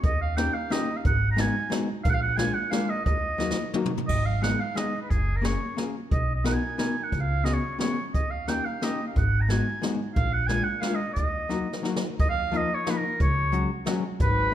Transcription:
0.03 D#2 D#5, kick, closed hi-hat
0.22 F5
0.37 A#3 C#4 D#4 G4 G5, snare, closed hi-hat
0.53 F5
0.70 A#3 C#4 D#4 G4 D#5, snare, closed hi-hat
0.97 F5
1.05 G#1 F#5, kick, closed hi-hat
1.32 A#5
1.36 G#3 B3 D#4 F#4, snare, closed hi-hat
1.41 G#5
1.70 G#3 B3 D#4 F#4, snare, closed hi-hat
2.04 A#1 F5, kick, closed hi-hat
2.09 F#5
2.13 F5
2.22 F#5
2.37 G#3 A#3 D4 F4 G#5, snare, closed hi-hat
2.54 F#5
2.71 G#3 A#3 D4 F4 F5, snare, closed hi-hat
2.90 D#5
3.05 D#2 D#5, kick, closed hi-hat
3.38 F#3 A#3 D#4 F#4, snare
3.51 snare
3.74 F#3 A#3 D#4 F#4, mid tom
3.85 mid tom
3.97 floor tom
4.07 G#1 D#5, kick, crash
4.26 F5
4.42 G#3 B3 D#4 G#4 F#5, snare, closed hi-hat
4.60 F5
4.75 G#3 B3 D#4 G#4 D#5, snare, closed hi-hat
5.02 B4
5.10 F#1 G#4, kick, closed hi-hat
5.36 A#4
5.42 A#3 C#4 F#4 G#4 C#5, snare, closed hi-hat
5.77 A#3 C#4 F#4 G#4, snare, closed hi-hat
6.11 B1 D#5, kick, closed hi-hat
6.35 D#5
6.44 B3 D#4 F#4 A#4 F#5, snare, closed hi-hat
6.53 G#5
6.78 B3 D#4 F#4 A#4 G#5, snare, closed hi-hat
7.03 F#5
7.12 C#2, kick, closed hi-hat
7.20 F5
7.44 B3 C#4 F#4 G#4 D#5, snare, closed hi-hat
7.54 C#5
7.79 B3 C#4 F#4 G#4 C#5, snare, closed hi-hat
8.14 D#2 D#5, kick, closed hi-hat
8.31 F5
8.48 A#3 C#4 D#4 G4 G5, snare, closed hi-hat
8.65 F5
8.82 A#3 C#4 D#4 G4 D#5, snare, closed hi-hat
9.07 F5
9.16 G#1 F#5, kick, closed hi-hat
9.41 A#5
9.48 G#3 B3 D#4 F#4 G#5, snare, closed hi-hat
9.82 G#3 B3 D#4 F#4, snare, closed hi-hat
10.16 A#1 F5, kick, closed hi-hat
10.33 F#5
10.47 G#3 A#3 D4 F4 G#5, snare, closed hi-hat
10.64 F#5
10.80 G#3 A#3 D4 F4 F5, snare, closed hi-hat
10.95 D#5
11.13 D#2 D#5, kick, closed hi-hat
11.49 F#3 A#3 D#4 F#4, snare
11.73 snare
11.83 F#3 A#3 D#4 F#4, snare
11.96 snare
12.19 D#2 D#5, kick, closed hi-hat
12.30 F5
12.52 F3 A#3 D#4 F4, closed hi-hat
12.57 D#5
12.75 C#5
12.87 F3 A#3 D#4 F4 B4, snare, closed hi-hat
12.97 A#4
13.20 C#2 C#5, kick, closed hi-hat
13.52 F#3 G#3 C#4 F#4, closed hi-hat
13.86 F#3 G#3 C#4 F#4, snare, closed hi-hat
14.20 G#1 B4, kick, closed hi-hat

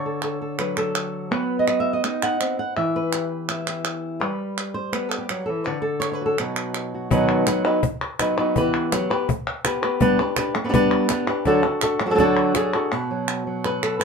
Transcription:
Already playing: D3 C#5
0.06 A4
0.22 A4, clap
0.42 A4
0.59 F#3 B4, clap
0.77 A4, clap
0.95 clap
1.31 B3 B4, clap
1.59 D#5
1.68 D#5, clap
1.80 E5
1.93 D#5
2.04 D#4 D#5, clap
2.22 F#5, clap
2.41 C4, clap
2.59 F#5
2.77 E3 E5, clap
2.96 B4
3.13 G4, clap
3.49 E4, clap
3.67 G4, clap
3.85 clap
4.20 G3 B4, clap
4.58 clap
4.74 C5
4.92 B3 B4, clap
5.09 A4, clap
5.18 G4
5.29 F#3, clap
5.46 E3 A4
5.64 D3 B4
5.82 A4
6.00 C#5, clap
6.12 B4 C#5
6.21 F#4
6.26 A4
6.38 B2 F#3 D#4 F#4 B4, clap
6.56 clap
6.74 clap
6.94 F#4
7.10 B2 D#3 F#3 B3 D#4 B4, cajon bass
7.46 F#3 B3 D#4 B4, cajon slap, clap
7.65 F#3 B3 D#4 B4, clap
7.83 muted nylon-string guitar stroke, cajon bass
8.19 F#3 B3 D#4 B4, cajon slap, clap
8.37 F#3 B3 D#4 B4, cajon slap, clap
8.56 E3 B3 G4 B4, cajon bass
8.92 F#3 B3 G4 B4, cajon slap, clap
9.10 B3 G4 B4, clap
9.29 muted nylon-string guitar stroke, cajon bass
9.65 B3 G4 B4, cajon slap, clap
9.82 B3 G4 B4, clap
10.00 G3 B3 D4 G4 B4, cajon bass
10.20 D4 G4 B4
10.36 D4 G4 B4, cajon slap, clap
10.55 muted nylon-string guitar stroke, clap
10.64 B3 D4 G4 B4
10.69 B3 D4 G4 B4
10.73 G3 B3 D4 G4 B4, cajon bass
11.09 B3 D4 G4 B4, cajon slap, clap
11.27 D4 G4 B4, cajon slap, clap
11.45 D3 F#3 D4 F#4 A4, cajon bass, cajon slap
11.64 D4 F#4 A4
11.81 D4 F#4 A4, cajon slap, clap
12.00 muted nylon-string guitar stroke, clap
12.06 F#3 D4 F#4 A4
12.10 F#3 D4 F#4 A4
12.14 F#3 D4 F#4 A4, cajon bass, cajon slap
12.19 D3 F#3 D4 F#4 A4
12.55 F#3 D4 F#4 G#4 A4, cajon slap, clap
12.73 D4 F#4 A4, clap
12.92 B2 B4
13.11 F#3
13.28 clap
13.47 F#3
13.64 B4, clap
13.83 A4, clap
14.00 B4

